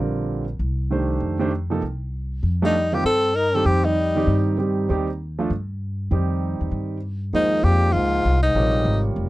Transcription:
Already playing: A#1 D3 G3 C4
0.00 F4 A#4
0.59 C2
0.90 D#3 A3 D4 G4 C5
1.20 F2
1.39 D#3 A3 D4 G4 C5
1.70 C3 F3 A#3 D#4 A4
1.82 C2
2.43 F2
2.62 F3 G3 A3 D4 D#4 F4 A4
2.92 D#3 G3 A#3 C4 D#4 F4 G4
3.04 G2 C4 A4
3.35 D#4 A#4
3.54 D#3 G3 C4 D#4 G4 A4
3.65 F2 C4 G4
3.85 G3 D#4
4.15 D#3 G3 C4 D#4 G4
4.27 G2
4.58 D#3 G3 C4 D#4 G4
4.89 D#2 D#3 G3 C4 D#4 G4
5.39 F3 A3 D4 F4 A4
5.50 G2
6.11 F2 D#3 G3 C4 D#4 G4
6.61 E2
6.71 G2
7.33 D#2 G#2 F3 G#3 A#3 D#4 C5
7.64 F2 A#2 G4
7.93 C#2 G#2 F4
8.25 C2
8.43 G#2 D#4
8.55 A#1 C3 G3 F4 A#4 C#5
8.85 G#1
9.16 F1

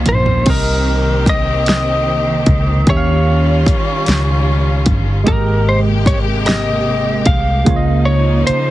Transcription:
Already playing: D#3 A#3 C#4 F4 D#5
0.06 A#1 C5, closed hi-hat, mid tom
0.26 floor tom
0.45 C2 C3 C4 G4 A#4, kick, crash
0.50 A#4 D#5
1.26 D#5, kick, closed hi-hat
1.66 D#5, snare, closed hi-hat
2.46 C#2, kick, closed hi-hat
2.86 D#2 D#3 G3 C#4 F4 G4, kick, closed hi-hat
2.90 C#5 E5
2.97 F5
3.66 muted fingered electric bass stroke, kick, closed hi-hat
4.06 C#2, snare, closed hi-hat
4.86 G1, kick, closed hi-hat
5.24 G#1 C3 G#3 A#3 G4 A#4, kick, closed hi-hat
5.28 A#4 D#5
5.69 C5
6.06 C#5, kick, closed hi-hat
6.46 D#5, snare, closed hi-hat
7.26 C2 F5, kick, closed hi-hat
7.65 C#2 C#3 F3 A#3 D#4 F4, kick, closed hi-hat
7.70 C#5
7.76 D#5
8.05 C#5
8.47 C5, muted fingered electric bass stroke, closed hi-hat

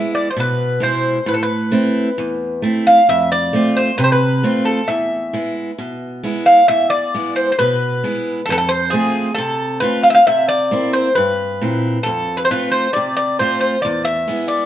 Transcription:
Already playing: G#3 B3 E4 E5
0.15 D5
0.30 C5
0.37 B2 B4
0.80 B2 G#3 E4 C5
1.26 A2 B4
1.34 A4
1.43 B4
1.72 A3 C4 E4
2.18 E2
2.62 A3 C4 E4
2.87 F5
3.09 F2 E5
3.32 D5
3.53 A3 C4 F4
3.77 C5
3.98 C3 B4
4.04 C5
4.12 B4
4.43 A3 C4 F4
4.65 A4
4.88 E2 E5
5.33 G#3 B3 E4
5.78 B2
6.23 G#3 B3 E4
6.46 F5
6.68 E2 E5
6.90 D5
7.14 G#3 B3 E4
7.36 C5
7.52 C5
7.59 B2 B4
8.04 G#3 B3 E4
8.46 F2 A4
8.50 A4 B4
8.58 A4
8.69 C5
8.90 A3 C4 G#4
8.95 F4
9.35 C3 A4
9.80 A3 C4 F4 B4
10.03 F5
10.10 E5
10.15 F5
10.27 C3 E5
10.49 D5
10.71 A#3 C4 E4
10.93 C5
11.15 G2 B4
11.61 A#2 C4 E4
12.03 F2 A4
12.37 B4
12.45 C5
12.51 A3 C4 F4 B4
12.72 C5
12.93 C3 D5
13.17 D5
13.39 A3 C4 F4 C5
13.61 C5
13.82 E2 D5
14.05 E5
14.28 G#3 B3 E4
14.48 D5

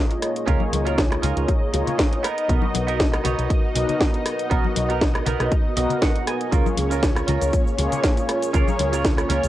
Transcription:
Already playing: A#3 D#4 F4 G#4 C#5 D#5
0.10 muted clean electric guitar stroke, closed hi-hat
0.22 cross-stick, open hi-hat
0.36 closed hi-hat
0.46 C#2 A#3 C#4 F4 G#4 A#4 C#5, kick, closed hi-hat
0.60 high conga
0.72 C#2, muted clean electric guitar stroke, open hi-hat, high conga
0.85 C#4 F4 A#4, closed hi-hat, high bongo
0.98 kick, snare, closed hi-hat
1.11 muted clean electric guitar stroke, cross-stick, closed hi-hat
1.22 C#2 C#4 F4 A#4, open hi-hat, low conga
1.37 C#2, closed hi-hat
1.48 kick, closed hi-hat, high bongo
1.73 C#2 A#3 F4 G#4 C#5, muted clean electric guitar stroke, open hi-hat, high bongo
1.86 muted clean electric guitar stroke, closed hi-hat, low conga
1.98 muted clean electric guitar stroke, kick, snare, closed hi-hat
2.12 muted clean electric guitar stroke, closed hi-hat
2.23 B3 D#4 A#4, cross-stick, open hi-hat
2.38 closed hi-hat
2.48 B1 B3 F#4 A#4 D#5, kick, closed hi-hat
2.62 high conga
2.74 B1, muted clean electric guitar stroke, open hi-hat, high conga
2.87 B3 D#4 A#4, closed hi-hat
3.00 kick, snare, closed hi-hat
3.12 muted clean electric guitar stroke, cross-stick, closed hi-hat
3.24 B1 B3 D#4 C#5, open hi-hat, low conga
3.38 B1, closed hi-hat
3.50 kick, closed hi-hat
3.74 B1 B3 F#4 A#4 D#5, muted clean electric guitar stroke, open hi-hat, high bongo
3.88 muted clean electric guitar stroke, closed hi-hat, low conga
4.00 muted clean electric guitar stroke, kick, snare, closed hi-hat
4.13 muted clean electric guitar stroke, closed hi-hat
4.26 cross-stick, open hi-hat
4.39 closed hi-hat
4.50 B1 B3 D#4 F#4 A#4 D#5, kick, closed hi-hat
4.64 high conga
4.75 B1, muted clean electric guitar stroke, open hi-hat, high conga
4.89 B3 D#4 A#4, closed hi-hat, high bongo
5.01 kick, snare, closed hi-hat
5.14 muted clean electric guitar stroke, cross-stick, closed hi-hat
5.26 B1 B3 D#4 A#4, open hi-hat, low conga
5.40 B1, cross-stick, closed hi-hat
5.51 kick, closed hi-hat, high bongo
5.76 B1 B3 F#4 A#4 D#5, muted clean electric guitar stroke, open hi-hat, high bongo
5.90 muted clean electric guitar stroke, closed hi-hat, low conga
6.01 F#5, muted clean electric guitar stroke, kick, snare, closed hi-hat
6.15 muted clean electric guitar stroke, closed hi-hat
6.27 G#5, cross-stick, open hi-hat
6.41 closed hi-hat
6.51 C#2 A#3 C#4 F4 G#4 A#4 C#5, kick, closed hi-hat, shaker
6.66 high conga, shaker
6.77 C#2, muted clean electric guitar stroke, open hi-hat, high conga
6.90 C#4 F4 A#4, closed hi-hat, shaker
7.03 kick, snare, closed hi-hat, shaker
7.16 muted clean electric guitar stroke, cross-stick, closed hi-hat, shaker
7.27 C#2 C#4 F4 A#4, open hi-hat, low conga
7.42 C#2, closed hi-hat, shaker
7.53 kick, closed hi-hat, shaker
7.67 shaker
7.78 C#2 A#3 F4 G#4 C#5, muted clean electric guitar stroke, open hi-hat, high bongo
7.91 muted clean electric guitar stroke, closed hi-hat, low conga, shaker
8.03 muted clean electric guitar stroke, kick, snare, closed hi-hat, shaker
8.16 muted clean electric guitar stroke, closed hi-hat, shaker
8.29 cross-stick, open hi-hat
8.42 closed hi-hat, shaker
8.53 C#2 A#3 C#4 F4 G#4 A#4 C#5, kick, closed hi-hat, shaker
8.68 high conga, shaker
8.78 C#2, muted clean electric guitar stroke, open hi-hat, high conga
8.92 C#4 F4 A#4, closed hi-hat, high bongo, shaker
9.05 kick, snare, closed hi-hat, shaker
9.17 muted clean electric guitar stroke, cross-stick, closed hi-hat, shaker
9.29 C#2 C#4 F4 A#4, open hi-hat, low conga
9.43 C#2, closed hi-hat, shaker

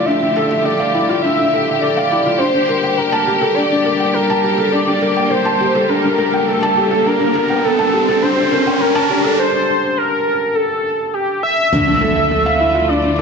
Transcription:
Already playing: D2 D3 F3 A3 D4 E4 F4 G4 A4 E5 F5
0.05 D4 E5
0.22 D4
0.36 A4
0.50 E5
0.65 A4 D5
0.80 F5
0.94 E4
1.09 F4
1.22 D4 E5
1.39 D4
1.54 A4
1.68 E5
1.81 A4 D5
1.97 F5
2.11 E4
2.26 F4
2.38 D2 G3 A#3 D4 C5, riser
2.54 D4
2.69 A#4
2.83 G5
2.97 A#4
3.12 A5
3.27 G4
3.42 A4
3.54 D4 D5
3.71 D4
3.85 A#4
4.00 G5
4.14 A#4
4.30 A5
4.44 G4
4.58 A4
4.72 D4 D5
4.87 D4
5.02 A#4
5.16 G5
5.30 A#4 C5
5.45 A5
5.60 G4
5.75 A4
5.89 D4 A#4
6.04 D4
6.18 A#4
6.33 G5
6.47 A4 A#4
6.63 A5
6.77 G4
6.91 A4
7.06 D4 A#4
7.20 D4
7.35 A#4
7.50 G5
7.64 A4 A#4
7.79 A5
7.93 G4
8.09 A4
8.22 D4 C5
8.38 D4
8.51 A#4
8.67 G5
8.80 A#4
8.95 A5
9.10 G4
9.24 A4
9.39 C5
9.97 A#4
10.55 A4
11.13 G4
11.43 E5
11.72 D2 D3 F3 A3 D4, impact
11.87 D4
12.01 A4
12.16 E5
12.31 A4
12.46 F5
12.60 E4
12.75 F4
12.88 D4 D5
13.04 D4
13.19 A4

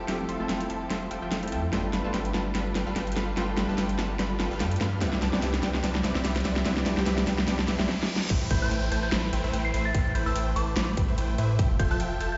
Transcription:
Already playing: F3 A3 C4 E4 G4 A4
0.07 F1 F3 A3 C4 E4 F4 G4 A4 E5 G5, snare, closed hi-hat
0.29 F1 F3 F4 A4 E5 C6, closed hi-hat
0.38 F1 F3 A3 C4 E4 F4 A4 E5 A5
0.42 A4
0.49 F1 F3 F4 A4 E5 G5, snare, closed hi-hat
0.60 closed hi-hat
0.70 F1 F3 F4 A4 E5 A5, closed hi-hat
0.90 F1 F3 F4 A4 E5 C6, snare, closed hi-hat
1.11 F1 F3 F4 A4 E5 G5, closed hi-hat
1.22 F1 F3 F4 A4 E5 G5
1.31 F1 F3 F4 A4 E5 G5, snare, closed hi-hat
1.42 A3 C4 E4 A4, closed hi-hat
1.48 closed hi-hat
1.52 F2 F3 F4 A4 E5 G5, closed hi-hat
1.72 G1 G3 A3 B3 D4 F4 A4 B4 G5, snare, closed hi-hat, riser
1.93 G1 G3 F4 A4 B4 B5, snare, closed hi-hat
2.03 G1 G3 A3 B3 D4 F4 A4 B4 A5
2.14 G1 G3 F4 A4 B4 G5, snare, closed hi-hat
2.25 closed hi-hat
2.34 G1 G3 F4 A4 B4 A5, snare, closed hi-hat
2.55 G1 G3 F4 A4 B4 B5, snare, closed hi-hat
2.75 G1 G3 F4 A4 B4 G5, snare, closed hi-hat
2.87 G1 G3 F4 A4 B4 F5
2.96 G1 G3 F4 A4 B4 G5, snare, closed hi-hat
3.07 closed hi-hat
3.12 closed hi-hat
3.16 G1 G3 F4 A4 B4 F5, snare, closed hi-hat
3.36 G1 G3 A3 B3 D4 F4 A4 B4 G5, snare, closed hi-hat
3.57 G1 G3 F4 A4 B4 B5, snare, closed hi-hat
3.67 G1 G3 A3 B3 D4 F4 G4 A4 B4 A5
3.78 G1 G3 F4 A4 B4 G5, snare, closed hi-hat
3.89 closed hi-hat
3.99 G1 G3 F4 A4 B4 A5, snare, closed hi-hat
4.19 G1 G3 F4 A4 B4 B5, snare, closed hi-hat
4.40 G1 G3 F4 A4 B4 G5, snare, closed hi-hat
4.51 G1 G3 F4 A4 B4 F5
4.60 G2 G3 F4 A4 B4 G5, snare, closed hi-hat
4.71 closed hi-hat
4.76 closed hi-hat
4.81 G2 G3 F4 A4 B4 F5, snare, closed hi-hat
5.00 C2 C3 G3 B3 C4 D4 E4 G4 B4 D5 E5, snare, closed hi-hat
5.13 snare
5.22 C2 C4 G4 B4 D5 A5, snare, closed hi-hat
5.31 C2 G3 B3 C4 D4 G4 B4 D5 G5, snare
5.35 E4
5.42 C2 C4 G4 B4 D5 E5, snare, closed hi-hat
5.54 snare, closed hi-hat
5.63 C2 C4 G4 B4 D5 G5, snare, closed hi-hat
5.74 snare
5.83 C2 C4 G4 B4 D5 A5, snare, closed hi-hat
5.95 snare
6.04 C2 C4 G4 B4 D5 E5, snare, closed hi-hat
6.15 C2 C4 G4 B4 D5 E5, snare
6.25 C2 C4 G4 B4 D5 E5, snare, closed hi-hat
6.36 snare, closed hi-hat
6.40 closed hi-hat
6.45 C2 C4 G4 B4 D5 E5, snare, closed hi-hat
6.56 snare
6.65 C2 G3 B3 C4 D4 E4 G4 B4 D5 E5, snare, closed hi-hat
6.77 snare
6.86 C2 C4 G4 B4 D5 A5, snare, closed hi-hat
6.96 C2 G3 B3 C4 D4 G4 B4 D5 G5, snare
7.06 C2 C4 G4 B4 D5 E5, snare, closed hi-hat
7.18 snare, closed hi-hat
7.27 C2 C4 G4 B4 D5 G5, snare, closed hi-hat
7.38 snare
7.48 C2 C4 G4 B4 D5 A5, snare, closed hi-hat, reverse cymbal
7.59 snare
7.68 C2 C4 G4 B4 D5 E5, snare, closed hi-hat
7.80 C2 C4 G4 B4 D5 E5, snare
7.89 snare
8.03 snare
8.16 snare
8.30 A1 A3 E4 B4 C5 G5, kick, closed hi-hat, crash, downlifter
8.51 A1 A3 E4 B4 C5 B5 G6, kick, closed hi-hat
8.62 A1 A3 E4 B4 C5 A5 G6
8.71 A1 A3 E4 B4 C5 G5, closed hi-hat
8.92 A1 A3 E4 B4 C5 A5 G6, closed hi-hat
9.03 G6
9.12 A1 A3 E4 B4 C5 B5, snare, closed hi-hat
9.33 A1 A3 E4 B4 C5 G5, closed hi-hat
9.44 A1 A3 E4 B4 C5 E5
9.53 A1 A3 E4 B4 C5 G5, closed hi-hat
9.65 C7
9.74 A1 A3 E4 B4 C5 E5, closed hi-hat
9.85 A6
9.95 A1 A3 E4 B4 C5 G5, kick, closed hi-hat
10.15 A1 A3 E4 B4 C5 B5 G6, closed hi-hat
10.26 A1 A3 E4 B4 C5 A5 E6
10.35 A1 A3 E4 B4 C5 G5 E6, closed hi-hat
10.56 A1 A3 E4 B4 C5 A5 D6, closed hi-hat
10.77 A1 A3 E4 B4 C5 B5, snare, closed hi-hat
10.97 A1 A3 E4 B4 C5 G5, kick, closed hi-hat
11.08 A1 A3 E4 B4 C5 E5
11.18 A1 A3 E4 B4 C5 G5, closed hi-hat
11.38 A2 A3 E4 B4 C5 E5, closed hi-hat
11.59 F1 F3 F4 A4 E5 G5, kick, closed hi-hat
11.79 F1 F3 F4 A4 E5 C6 G6, kick, closed hi-hat
11.91 F1 F3 F4 A4 E5 A5 G6
12.00 F1 F3 F4 A4 E5 G5, closed hi-hat
12.21 F1 F3 F4 A4 E5 A5 G6, closed hi-hat
12.32 G6

